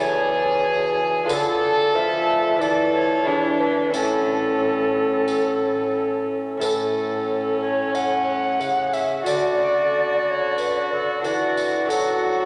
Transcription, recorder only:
0.00 0.96 C#5 medium
1.28 1.34 B4 medium
1.33 1.97 A4 loud
1.95 2.63 E5 loud
2.61 2.94 D5 medium
2.94 3.62 C#5 loud
3.60 3.94 B4 medium
3.95 6.24 A4 medium
6.62 7.57 A4 medium
6.62 6.66 B4 medium
7.61 7.96 C#5 medium
7.95 8.95 F#5 medium
8.93 9.25 E5 medium
9.26 10.26 D5 medium
10.26 10.31 D5 medium
10.30 10.58 C#5 medium
10.58 10.90 B4 medium
10.92 11.27 A4 medium
11.25 11.91 D5 medium
11.90 12.45 A4 medium

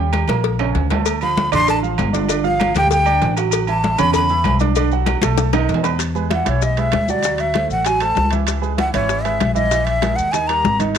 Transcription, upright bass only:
0.00 0.22 D#2 loud
0.28 0.71 A#1 medium
0.75 1.47 D2 loud
1.52 1.95 A1 medium
1.98 2.70 G1 loud
2.75 3.18 D2 loud
3.22 3.93 A1 loud
3.99 4.42 E2 loud
4.45 5.17 B1 loud
5.22 5.65 B1 loud
5.69 6.41 E2 loud
6.47 6.90 B1 medium
6.93 7.65 D2 medium
7.70 8.13 A1 medium
8.16 8.88 C#2 medium
8.94 9.37 G#1 medium
9.41 10.12 A#1 medium
10.18 10.61 D#2 medium
10.64 10.98 G#1 medium

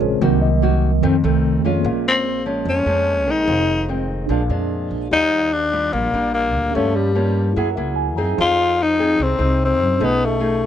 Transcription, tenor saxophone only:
2.08 2.45 C4 medium
2.70 3.32 C#4 medium
3.31 3.90 D#4 medium
5.13 5.55 D#4 loud
5.53 5.95 D4 medium
5.93 6.34 A#3 medium
6.34 6.76 A#3 medium
6.75 6.97 A3 loud
6.96 7.56 G3 medium
8.41 8.84 F4 loud
8.83 9.24 D#4 medium
9.23 9.62 C4 medium
9.65 10.06 C4 medium
10.05 10.27 B3 medium
10.25 10.66 A3 medium

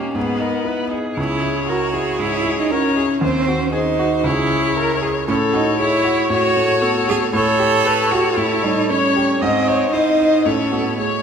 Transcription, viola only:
0.00 0.17 G4 soft
0.15 0.42 G#4 soft
0.41 0.69 A#4 soft
0.67 0.92 B4 soft
0.92 1.70 G#4 soft
1.68 1.94 A#4 soft
1.95 2.72 G#4 medium
2.71 2.96 A#4 medium
2.97 3.05 G#4 soft
3.21 3.72 C5 medium
3.72 3.80 G#4 soft
3.99 4.07 F#4 soft
4.25 4.76 G#4 medium
4.77 5.01 A#4 medium
5.02 5.10 G#4 medium
5.27 5.78 A4 medium
5.79 6.83 C#5 medium
6.82 7.33 A4 medium
7.34 7.88 C#5 medium
7.86 8.14 B4 medium
8.12 8.91 A4 medium
8.90 9.43 C#5 medium
9.41 9.69 D#5 medium
9.68 9.94 C#5 medium
9.93 10.45 C5 soft
10.46 10.97 A4 medium
10.99 11.22 C#5 soft

